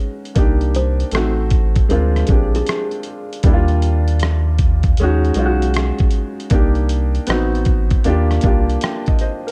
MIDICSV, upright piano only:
0, 0, Header, 1, 2, 480
1, 0, Start_track
1, 0, Key_signature, -3, "major"
1, 0, Tempo, 769231
1, 224, Time_signature, 4, 2, 24, 8
1, 5939, End_track
2, 0, Start_track
2, 0, Title_t, "Upright piano"
2, 0, Program_c, 0, 0
2, 0, Control_c, 0, 64, 127
2, 0, Note_on_c, 0, 56, 68
2, 0, Note_on_c, 0, 61, 65
2, 0, Note_on_c, 0, 63, 58
2, 0, Note_on_c, 0, 66, 83
2, 0, Note_on_c, 0, 68, 75
2, 217, Note_on_c, 0, 58, 72
2, 224, Note_on_c, 0, 62, 68
2, 232, Note_off_c, 0, 63, 0
2, 232, Note_on_c, 0, 63, 70
2, 233, Control_c, 0, 64, 0
2, 234, Note_off_c, 0, 66, 0
2, 236, Note_off_c, 0, 61, 0
2, 238, Note_off_c, 0, 56, 0
2, 238, Note_off_c, 0, 68, 0
2, 238, Note_on_c, 0, 67, 84
2, 345, Control_c, 0, 64, 127
2, 700, Note_on_c, 0, 57, 71
2, 701, Note_off_c, 0, 58, 0
2, 704, Note_off_c, 0, 62, 0
2, 705, Note_off_c, 0, 63, 0
2, 706, Note_on_c, 0, 60, 69
2, 711, Note_off_c, 0, 67, 0
2, 713, Control_c, 0, 64, 0
2, 714, Note_on_c, 0, 63, 57
2, 721, Note_on_c, 0, 66, 80
2, 812, Control_c, 0, 64, 127
2, 1116, Note_off_c, 0, 57, 0
2, 1119, Note_off_c, 0, 60, 0
2, 1123, Note_off_c, 0, 63, 0
2, 1127, Note_off_c, 0, 66, 0
2, 1177, Note_on_c, 0, 56, 81
2, 1185, Note_on_c, 0, 60, 71
2, 1193, Control_c, 0, 64, 0
2, 1193, Note_on_c, 0, 62, 67
2, 1201, Note_on_c, 0, 65, 85
2, 1296, Control_c, 0, 64, 127
2, 1388, Note_off_c, 0, 56, 0
2, 1392, Note_off_c, 0, 60, 0
2, 1396, Note_off_c, 0, 62, 0
2, 1400, Note_off_c, 0, 65, 0
2, 1420, Note_on_c, 0, 56, 68
2, 1425, Note_on_c, 0, 60, 58
2, 1433, Note_on_c, 0, 62, 62
2, 1441, Note_on_c, 0, 67, 73
2, 1916, Note_off_c, 0, 56, 0
2, 1919, Note_off_c, 0, 60, 0
2, 1923, Note_off_c, 0, 62, 0
2, 1926, Note_off_c, 0, 67, 0
2, 2144, Note_on_c, 0, 55, 77
2, 2150, Note_on_c, 0, 58, 69
2, 2152, Control_c, 0, 64, 0
2, 2158, Note_on_c, 0, 62, 78
2, 2165, Note_on_c, 0, 64, 73
2, 2206, Note_on_c, 0, 65, 94
2, 2208, Note_off_c, 0, 64, 0
2, 2267, Control_c, 0, 64, 127
2, 2819, Note_off_c, 0, 55, 0
2, 2822, Note_off_c, 0, 58, 0
2, 2826, Note_off_c, 0, 62, 0
2, 2850, Note_off_c, 0, 65, 0
2, 3113, Control_c, 0, 64, 0
2, 3119, Note_on_c, 0, 56, 91
2, 3126, Note_on_c, 0, 61, 83
2, 3134, Note_on_c, 0, 63, 82
2, 3141, Note_on_c, 0, 66, 98
2, 3228, Control_c, 0, 64, 127
2, 3318, Note_off_c, 0, 56, 0
2, 3322, Note_off_c, 0, 61, 0
2, 3326, Note_off_c, 0, 63, 0
2, 3330, Note_off_c, 0, 66, 0
2, 3344, Note_on_c, 0, 56, 87
2, 3351, Note_on_c, 0, 61, 68
2, 3357, Note_on_c, 0, 63, 75
2, 3363, Note_on_c, 0, 65, 74
2, 3405, Note_on_c, 0, 66, 98
2, 3407, Note_off_c, 0, 65, 0
2, 3838, Note_off_c, 0, 56, 0
2, 3842, Note_off_c, 0, 61, 0
2, 3845, Note_off_c, 0, 63, 0
2, 3869, Note_off_c, 0, 66, 0
2, 4058, Note_on_c, 0, 58, 82
2, 4067, Note_on_c, 0, 62, 70
2, 4071, Control_c, 0, 64, 0
2, 4073, Note_on_c, 0, 63, 73
2, 4080, Note_on_c, 0, 67, 90
2, 4177, Control_c, 0, 64, 127
2, 4537, Note_on_c, 0, 59, 79
2, 4541, Note_off_c, 0, 58, 0
2, 4542, Note_off_c, 0, 63, 0
2, 4545, Note_off_c, 0, 62, 0
2, 4546, Note_on_c, 0, 60, 74
2, 4551, Note_on_c, 0, 63, 78
2, 4552, Note_off_c, 0, 67, 0
2, 4553, Control_c, 0, 64, 0
2, 4561, Note_on_c, 0, 66, 83
2, 4664, Control_c, 0, 64, 127
2, 4954, Note_off_c, 0, 59, 0
2, 4959, Note_off_c, 0, 60, 0
2, 4962, Note_off_c, 0, 63, 0
2, 4966, Note_off_c, 0, 66, 0
2, 5020, Note_on_c, 0, 58, 85
2, 5028, Note_on_c, 0, 62, 88
2, 5032, Control_c, 0, 64, 0
2, 5035, Note_on_c, 0, 65, 82
2, 5042, Note_on_c, 0, 67, 99
2, 5144, Control_c, 0, 64, 127
2, 5229, Note_off_c, 0, 58, 0
2, 5233, Note_off_c, 0, 62, 0
2, 5237, Note_off_c, 0, 65, 0
2, 5240, Note_off_c, 0, 67, 0
2, 5258, Note_on_c, 0, 58, 78
2, 5267, Note_on_c, 0, 62, 71
2, 5274, Note_on_c, 0, 65, 74
2, 5280, Note_on_c, 0, 67, 88
2, 5510, Note_on_c, 0, 79, 71
2, 5663, Note_on_c, 0, 75, 58
2, 5731, Note_off_c, 0, 79, 0
2, 5738, Note_off_c, 0, 75, 0
2, 5747, Note_on_c, 0, 72, 68
2, 5747, Note_on_c, 0, 75, 63
2, 5755, Note_off_c, 0, 58, 0
2, 5760, Note_off_c, 0, 62, 0
2, 5763, Note_off_c, 0, 65, 0
2, 5766, Note_off_c, 0, 67, 0
2, 5895, Note_off_c, 0, 72, 0
2, 5909, Note_on_c, 0, 70, 61
2, 5939, Note_off_c, 0, 70, 0
2, 5939, Note_off_c, 0, 75, 0
2, 5939, End_track
0, 0, End_of_file